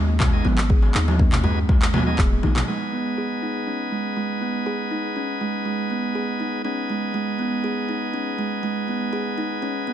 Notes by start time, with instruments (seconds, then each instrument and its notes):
Already playing: 808-style bass D#2
0.08 high conga
0.20 kalimba G#3, kick, clap, mid tom, darbuka tek
0.33 tonewheel organ B3 D#4 G#4 D#5
0.45 808-style bass G#1, kalimba B3, darbuka tek, low conga
0.58 clap, muted conga
0.70 kalimba G#4, kick
0.82 darbuka ka, darbuka tek
0.94 808-style bass D#2, kalimba D#4, clap, muted conga
1.08 darbuka tek, low conga
1.19 kalimba C#4, kick, high conga
1.32 clap, mid tom, darbuka tek
1.44 kalimba G#3, tonewheel organ B3 D#4 G#4 B4, darbuka ka, muted conga, high conga, darbuka dum
1.69 kalimba G#3, kick, high conga, darbuka tek
1.82 clap, muted conga
1.93 tonewheel organ B3 D#4 G#4 B4, kalimba B3, mid tom, high conga, darbuka tek, low conga
2.07 tonewheel organ B3 D#4 G#4 D#5
2.18 808-style bass D#1, kalimba G#4, kick, clap, muted conga, darbuka tek
2.32 high conga
2.43 808-style bass A#1, kalimba D#4, high tom, darbuka ka, high conga
2.56 clap, mid tom, muted conga, darbuka ka, darbuka tek, low conga
2.68 kalimba G#3, tonewheel organ B3 D#4 G#4 B4
2.93 kalimba B3
3.18 kalimba G#4
3.43 kalimba D#4
3.67 kalimba C#4
3.92 kalimba G#3
4.17 kalimba G#3
4.42 kalimba B3
4.66 kalimba G#4
4.91 kalimba D#4
5.16 kalimba C#4
5.41 kalimba G#3
5.65 kalimba G#3
5.90 kalimba B3
6.15 kalimba G#4
6.40 kalimba D#4
6.64 tonewheel organ B3 D#4 G#4 B4, kalimba C#4
6.90 kalimba G#3
7.14 kalimba G#3
7.39 kalimba B3
7.64 kalimba G#4
7.89 kalimba D#4
8.14 kalimba C#4
8.38 kalimba G#3
8.63 kalimba G#3
8.88 kalimba B3
9.13 kalimba G#4
9.38 kalimba D#4
9.62 kalimba C#4
9.87 kalimba B3